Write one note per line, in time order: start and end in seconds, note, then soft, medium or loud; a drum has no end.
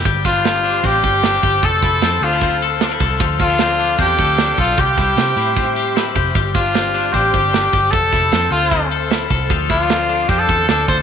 0.00 0.28 C4 medium
0.04 0.80 G1 medium
0.04 1.63 G3 medium
0.04 1.61 G4 medium
0.04 1.02 G4 medium
0.04 1.61 C5 medium
0.04 1.61 D5 medium
0.04 1.61 C6 medium
0.04 kick loud
0.04 closed hi-hat medium
0.25 0.63 D4 medium
0.25 0.87 F4 medium
0.25 0.80 F6 medium
0.25 kick loud
0.25 snare soft
0.25 closed hi-hat medium
0.44 0.83 C4 medium
0.44 snare loud
0.44 closed hi-hat medium
0.64 1.22 D4 medium
0.64 closed hi-hat medium
0.83 1.00 A1 medium
0.83 2.03 C4 medium
0.83 1.67 G4 loud
0.83 1.64 G6 medium
0.83 kick medium
0.83 closed hi-hat medium
1.03 1.37 G1 medium
1.03 1.42 G4 medium
1.03 kick medium
1.03 closed hi-hat medium
1.23 1.67 D4 medium
1.23 snare loud
1.23 closed hi-hat medium
1.43 1.60 G1 medium
1.43 1.63 G4 medium
1.43 kick medium
1.43 open hi-hat medium
1.63 1.80 F1 loud
1.63 4.75 A4 medium
1.63 2.62 A4 medium
1.63 2.25 A4 loud
1.63 3.19 C5 medium
1.63 4.75 A5 medium
1.63 7.89 C6 medium
1.63 2.22 A6 medium
1.63 kick loud
1.63 closed hi-hat medium
1.82 1.99 F1 loud
1.82 2.22 E4 medium
1.82 kick medium
1.82 closed hi-hat medium
2.01 2.19 F2 medium
2.01 2.43 C4 medium
2.01 snare loud
2.01 closed hi-hat medium
2.21 2.96 D2 medium
2.21 2.33 D4 medium
2.21 2.62 F4 medium
2.21 2.62 F6 medium
2.21 closed hi-hat medium
2.33 2.81 E4 medium
2.41 3.40 C4 medium
2.41 kick medium
2.41 closed hi-hat medium
2.61 3.00 A4 medium
2.61 closed hi-hat medium
2.81 2.92 D4 medium
2.81 snare loud
2.81 closed hi-hat medium
2.92 3.25 E4 medium
3.00 3.17 C2 loud
3.00 3.20 A4 medium
3.00 kick loud
3.00 open hi-hat medium
3.20 3.95 D2 loud
3.20 4.77 F3 medium
3.20 4.18 A4 medium
3.20 4.77 D5 medium
3.20 kick loud
3.20 closed hi-hat medium
3.39 3.50 C4 medium
3.39 3.96 F4 loud
3.39 3.95 F6 medium
3.39 kick loud
3.39 snare soft
3.39 closed hi-hat medium
3.50 3.79 D4 medium
3.58 3.98 C4 medium
3.58 snare loud
3.58 closed hi-hat loud
3.79 4.37 D4 medium
3.79 closed hi-hat medium
3.98 4.16 E2 medium
3.98 5.17 C4 medium
3.98 4.55 G4 loud
3.98 4.55 G6 medium
3.98 kick medium
3.98 closed hi-hat medium
4.18 4.52 D2 medium
4.18 4.57 A4 medium
4.18 kick medium
4.18 closed hi-hat medium
4.38 4.82 D4 medium
4.38 snare loud
4.38 closed hi-hat medium
4.58 4.75 B1 medium
4.58 4.82 F4 loud
4.58 4.78 A4 medium
4.58 4.78 F6 medium
4.58 kick medium
4.58 open hi-hat medium
4.77 4.95 C2 medium
4.77 6.34 G3 medium
4.77 5.76 G4 medium
4.77 7.90 G4 medium
4.77 6.17 G4 medium
4.77 6.34 C5 medium
4.77 6.35 E5 medium
4.77 6.17 G6 medium
4.77 kick loud
4.77 closed hi-hat medium
4.97 5.14 C2 loud
4.97 5.36 E4 medium
4.97 kick loud
4.97 snare soft
4.97 closed hi-hat medium
5.17 5.34 C3 medium
5.17 5.56 C4 medium
5.17 snare loud
5.17 closed hi-hat medium
5.36 6.11 A2 medium
5.36 5.95 E4 medium
5.36 closed hi-hat medium
5.56 6.58 C4 medium
5.56 kick medium
5.56 closed hi-hat medium
5.76 6.14 G4 medium
5.76 closed hi-hat medium
5.96 6.39 E4 medium
5.96 snare loud
5.96 closed hi-hat medium
6.15 6.32 F1 loud
6.15 6.35 G4 medium
6.15 kick loud
6.15 open hi-hat medium
6.35 7.10 G1 medium
6.35 7.93 G3 medium
6.35 7.33 G4 medium
6.35 7.91 C5 medium
6.35 7.92 D5 medium
6.35 kick loud
6.35 closed hi-hat medium
6.54 6.93 D4 medium
6.54 7.15 F4 medium
6.54 7.10 F6 medium
6.54 kick loud
6.54 snare soft
6.54 closed hi-hat medium
6.74 7.14 C4 medium
6.74 snare loud
6.74 closed hi-hat loud
6.94 7.52 D4 medium
6.94 closed hi-hat medium
7.12 7.30 A1 medium
7.12 8.32 C4 medium
7.12 7.92 G4 medium
7.12 7.92 G6 medium
7.12 kick medium
7.12 closed hi-hat medium
7.34 7.67 G1 medium
7.34 7.72 G4 medium
7.34 kick medium
7.34 closed hi-hat medium
7.53 7.97 D4 medium
7.53 snare loud
7.53 closed hi-hat medium
7.73 7.93 G1 medium
7.73 7.93 G4 medium
7.73 kick loud
7.73 open hi-hat medium
7.91 8.10 F1 medium
7.91 8.51 A4 loud
7.91 8.91 A4 medium
7.91 11.02 A4 medium
7.91 9.49 C5 medium
7.91 11.02 A5 medium
7.91 11.02 C6 medium
7.91 8.51 A6 medium
7.91 kick loud
7.91 closed hi-hat medium
8.13 8.29 F1 loud
8.13 8.52 E4 medium
8.13 kick loud
8.13 closed hi-hat medium
8.32 8.49 F2 medium
8.32 8.71 C4 medium
8.32 snare loud
8.32 closed hi-hat medium
8.51 9.26 D2 loud
8.51 8.88 F4 medium
8.51 8.88 F6 medium
8.51 closed hi-hat medium
8.71 9.73 C4 medium
8.71 kick medium
8.71 closed hi-hat medium
8.91 9.30 A4 medium
8.91 closed hi-hat medium
9.11 9.54 E4 medium
9.11 snare loud
9.11 closed hi-hat medium
9.31 9.47 C2 loud
9.31 9.50 A4 medium
9.31 kick medium
9.31 open hi-hat medium
9.50 10.25 D2 medium
9.50 11.02 F3 medium
9.50 10.48 A4 medium
9.50 11.02 D5 medium
9.50 kick loud
9.50 closed hi-hat medium
9.70 10.08 D4 medium
9.70 10.31 F4 medium
9.70 10.26 F6 medium
9.70 kick medium
9.70 snare soft
9.70 closed hi-hat medium
9.89 10.29 C4 medium
9.89 snare loud
9.89 closed hi-hat medium
10.09 10.68 D4 medium
10.09 closed hi-hat medium
10.29 10.46 F2 loud
10.29 11.02 C4 medium
10.29 10.41 G4 medium
10.29 10.40 G6 medium
10.29 kick medium
10.29 closed hi-hat medium
10.39 10.68 A4 loud
10.39 10.68 A6 medium
10.49 10.66 E2 medium
10.49 10.88 A4 medium
10.49 kick medium
10.49 closed hi-hat medium
10.69 10.85 D2 medium
10.69 11.02 D4 medium
10.69 10.87 A4 loud
10.69 10.87 A6 medium
10.69 snare loud
10.69 closed hi-hat medium
10.88 11.02 D2 loud
10.88 11.02 A4 medium
10.88 10.97 C5 loud
10.88 10.98 C7 medium
10.88 kick loud
10.88 open hi-hat medium